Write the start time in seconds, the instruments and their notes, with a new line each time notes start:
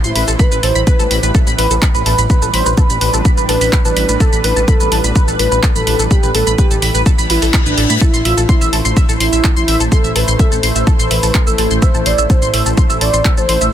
Already playing: analog synth pad A3 E4 C5
0.04 detuned saw bass A1, analog synth lead E4, synth arpeggio sound C6, shaker
0.15 detuned saw bass A1, synth arpeggio sound B4, open hi-hat
0.28 detuned saw bass A1, synth arpeggio sound A4, shaker
0.39 analog synth pad G3 B4, analog synth lead B4, synth arpeggio sound B5, kick, shaker
0.51 detuned saw bass A1, synth arpeggio sound B4, shaker
0.63 detuned saw bass A1, synth arpeggio sound A4, analog synth lead C5, open hi-hat
0.75 detuned saw bass A1, synth arpeggio sound B5, shaker
0.87 synth arpeggio sound B4, analog synth lead B4, kick, shaker
0.99 detuned saw bass A1, synth arpeggio sound A4, shaker
1.11 detuned saw bass A1, synth arpeggio sound B5, open hi-hat
1.23 detuned saw bass A1, synth arpeggio sound B4, shaker
1.35 synth arpeggio sound A4, kick, shaker
1.47 detuned saw bass A1, synth arpeggio sound B5, shaker
1.58 detuned saw bass A1, analog synth lead B4, synth arpeggio sound B4, open hi-hat
1.71 detuned saw bass A1, synth arpeggio sound A4, shaker
1.82 synth arpeggio sound B5, kick, clap, shaker
1.94 detuned saw bass A1, analog synth lead B4, synth arpeggio sound B4, shaker
2.06 detuned saw bass A1, synth arpeggio sound A4, open hi-hat
2.18 detuned saw bass A1, synth arpeggio sound B5, shaker
2.30 analog synth pad D4, analog synth lead B4, synth arpeggio sound B4, kick, shaker
2.42 detuned saw bass A1, synth arpeggio sound A4, shaker
2.54 detuned saw bass A1, analog synth lead C5, synth arpeggio sound B5, open hi-hat
2.66 detuned saw bass A1, synth arpeggio sound B4, shaker
2.77 synth arpeggio sound A4, analog synth lead B4, kick, shaker
2.90 detuned saw bass A1, synth arpeggio sound B5, shaker
3.01 detuned saw bass A1, synth arpeggio sound B4, open hi-hat
3.14 detuned saw bass A1, synth arpeggio sound A4, shaker
3.25 synth arpeggio sound B5, kick, shaker
3.37 detuned saw bass A1, synth arpeggio sound B4, shaker
3.49 detuned saw bass A1, synth arpeggio sound A4, analog synth lead B4, open hi-hat
3.61 detuned saw bass A1, synth arpeggio sound B5, open hi-hat, shaker
3.73 synth arpeggio sound B4, kick, clap, shaker
3.85 detuned saw bass A1, synth arpeggio sound A4, analog synth lead B4, shaker
3.96 detuned saw bass A1, synth arpeggio sound B5, open hi-hat
4.09 detuned saw bass A1, synth arpeggio sound B4, shaker
4.20 analog synth lead A4, synth arpeggio sound A4, kick, shaker
4.33 detuned saw bass A1, synth arpeggio sound B5, shaker
4.44 detuned saw bass A1, analog synth lead B4, synth arpeggio sound B4, open hi-hat
4.56 detuned saw bass A1, synth arpeggio sound A4, shaker
4.68 analog synth lead A4, synth arpeggio sound B5, kick, shaker
4.80 detuned saw bass A1, synth arpeggio sound B4, shaker
4.92 detuned saw bass A1, synth arpeggio sound A4, open hi-hat
5.04 detuned saw bass A1, synth arpeggio sound B5, shaker
5.16 synth arpeggio sound B4, kick, shaker
5.28 detuned saw bass A1, synth arpeggio sound A4, shaker
5.39 detuned saw bass A1, analog synth lead B4, synth arpeggio sound B5, open hi-hat
5.52 detuned saw bass A1, synth arpeggio sound B4, shaker
5.63 synth arpeggio sound A4, kick, clap, shaker
5.75 detuned saw bass A1, analog synth lead A4, synth arpeggio sound B5, shaker
5.87 detuned saw bass A1, synth arpeggio sound B4, open hi-hat
5.99 detuned saw bass A1, synth arpeggio sound A4, shaker
6.11 analog synth pad E4, analog synth lead G4, synth arpeggio sound B5, kick, shaker
6.23 detuned saw bass A1, synth arpeggio sound B4, shaker
6.34 detuned saw bass A1, analog synth lead A4, synth arpeggio sound A4, open hi-hat
6.47 detuned saw bass A1, synth arpeggio sound B5, shaker
6.58 analog synth lead G4, synth arpeggio sound B4, kick, shaker
6.71 detuned saw bass A1, synth arpeggio sound A4, shaker
6.82 detuned saw bass A1, synth arpeggio sound B5, open hi-hat
6.94 detuned saw bass A1, synth arpeggio sound B4, shaker
7.06 synth arpeggio sound A4, kick, reverse cymbal, shaker
7.18 detuned saw bass A1, synth arpeggio sound B5, shaker
7.30 detuned saw bass A1, analog synth lead E4, synth arpeggio sound B4, open hi-hat
7.42 detuned saw bass A1, synth arpeggio sound A4, open hi-hat, shaker
7.54 synth arpeggio sound B5, kick, clap, shaker
7.66 detuned saw bass A1, analog synth lead D4, synth arpeggio sound B4, shaker
7.78 detuned saw bass A1, synth arpeggio sound A4, open hi-hat
7.90 detuned saw bass A2, synth arpeggio sound B5, shaker
8.01 analog synth pad A3 C5, analog synth lead E4, synth arpeggio sound A4, kick, shaker
8.14 detuned saw bass A1, synth arpeggio sound C6, shaker
8.25 detuned saw bass A1, analog synth lead F4, synth arpeggio sound E5, open hi-hat
8.37 detuned saw bass A1, synth arpeggio sound A4, shaker
8.49 analog synth lead E4, synth arpeggio sound C6, kick, shaker
8.61 detuned saw bass A1, synth arpeggio sound E5, shaker
8.73 detuned saw bass A1, synth arpeggio sound A4, open hi-hat
8.85 detuned saw bass A1, synth arpeggio sound C6, shaker
8.97 synth arpeggio sound E5, kick, shaker
9.09 detuned saw bass A1, synth arpeggio sound A4, shaker
9.20 detuned saw bass A1, analog synth lead E4, synth arpeggio sound C6, open hi-hat
9.33 detuned saw bass A1, synth arpeggio sound E5, shaker
9.44 synth arpeggio sound A4, kick, clap, shaker
9.56 detuned saw bass A1, analog synth lead E4, synth arpeggio sound C6, shaker
9.68 detuned saw bass A1, synth arpeggio sound E5, open hi-hat
9.80 detuned saw bass A1, synth arpeggio sound A4, shaker
9.92 analog synth lead A4, synth arpeggio sound C6, kick, shaker
10.04 detuned saw bass A1, synth arpeggio sound E5, shaker
10.16 detuned saw bass A1, synth arpeggio sound A4, analog synth lead B4, open hi-hat
10.28 detuned saw bass A1, synth arpeggio sound C6, shaker
10.39 analog synth lead A4, synth arpeggio sound E5, kick, shaker
10.52 detuned saw bass A1, synth arpeggio sound A4, shaker
10.63 detuned saw bass A1, synth arpeggio sound C6, open hi-hat
10.75 detuned saw bass A1, synth arpeggio sound E5, shaker
10.87 synth arpeggio sound A4, kick, shaker
10.99 detuned saw bass A1, synth arpeggio sound C6, shaker
11.11 detuned saw bass A1, analog synth lead B4, synth arpeggio sound E5, open hi-hat
11.23 detuned saw bass A1, synth arpeggio sound A4, open hi-hat, shaker
11.35 synth arpeggio sound C6, kick, clap, shaker
11.47 detuned saw bass A1, analog synth lead A4, synth arpeggio sound E5, shaker
11.58 detuned saw bass A1, synth arpeggio sound A4, open hi-hat
11.71 detuned saw bass A1, synth arpeggio sound C6, shaker
11.82 analog synth lead C5, synth arpeggio sound E5, kick, shaker
11.94 detuned saw bass A1, synth arpeggio sound A4, shaker
12.06 detuned saw bass A1, analog synth lead D5, synth arpeggio sound C6, open hi-hat
12.18 detuned saw bass A1, synth arpeggio sound E5, shaker
12.30 synth arpeggio sound A4, analog synth lead C5, kick, shaker
12.42 detuned saw bass A1, synth arpeggio sound C6, shaker
12.54 detuned saw bass A1, synth arpeggio sound E5, open hi-hat
12.66 detuned saw bass A1, synth arpeggio sound A4, shaker
12.77 synth arpeggio sound C6, kick, shaker
12.90 detuned saw bass A1, synth arpeggio sound E5, shaker
13.01 detuned saw bass A1, synth arpeggio sound A4, analog synth lead D5, open hi-hat
13.14 detuned saw bass A1, synth arpeggio sound C6, shaker
13.25 synth arpeggio sound E5, kick, clap, shaker
13.37 detuned saw bass A1, synth arpeggio sound A4, analog synth lead C5, shaker
13.49 detuned saw bass A1, synth arpeggio sound C6, open hi-hat
13.61 detuned saw bass A1, synth arpeggio sound E5, shaker